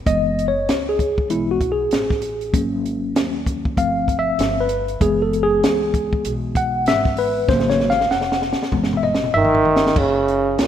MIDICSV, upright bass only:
0, 0, Header, 1, 3, 480
1, 0, Start_track
1, 0, Tempo, 618557
1, 51, Time_signature, 4, 2, 24, 8
1, 8283, End_track
2, 0, Start_track
2, 0, Title_t, "Upright bass"
2, 0, Program_c, 0, 32
2, 49, Note_on_c, 0, 30, 96
2, 506, Note_off_c, 0, 30, 0
2, 532, Note_on_c, 0, 37, 89
2, 987, Note_off_c, 0, 37, 0
2, 1014, Note_on_c, 0, 35, 94
2, 1469, Note_off_c, 0, 35, 0
2, 1491, Note_on_c, 0, 33, 87
2, 1947, Note_off_c, 0, 33, 0
2, 1969, Note_on_c, 0, 32, 99
2, 2426, Note_off_c, 0, 32, 0
2, 2447, Note_on_c, 0, 39, 87
2, 2905, Note_off_c, 0, 39, 0
2, 2929, Note_on_c, 0, 31, 101
2, 3386, Note_off_c, 0, 31, 0
2, 3406, Note_on_c, 0, 31, 100
2, 3864, Note_off_c, 0, 31, 0
2, 3889, Note_on_c, 0, 30, 102
2, 4346, Note_off_c, 0, 30, 0
2, 4370, Note_on_c, 0, 37, 84
2, 4826, Note_off_c, 0, 37, 0
2, 4851, Note_on_c, 0, 35, 98
2, 5307, Note_off_c, 0, 35, 0
2, 5331, Note_on_c, 0, 32, 104
2, 5787, Note_off_c, 0, 32, 0
2, 5809, Note_on_c, 0, 32, 107
2, 6266, Note_off_c, 0, 32, 0
2, 6293, Note_on_c, 0, 29, 85
2, 6653, Note_off_c, 0, 29, 0
2, 6767, Note_on_c, 0, 30, 102
2, 7225, Note_off_c, 0, 30, 0
2, 7252, Note_on_c, 0, 31, 91
2, 7707, Note_off_c, 0, 31, 0
2, 7728, Note_on_c, 0, 30, 100
2, 8186, Note_off_c, 0, 30, 0
2, 8211, Note_on_c, 0, 37, 79
2, 8283, Note_off_c, 0, 37, 0
2, 8283, End_track
3, 0, Start_track
3, 0, Title_t, "Muted upright bass strokes"
3, 6675, Note_on_c, 9, 29, 47
3, 6753, Note_off_c, 9, 29, 0
3, 8283, End_track
0, 0, End_of_file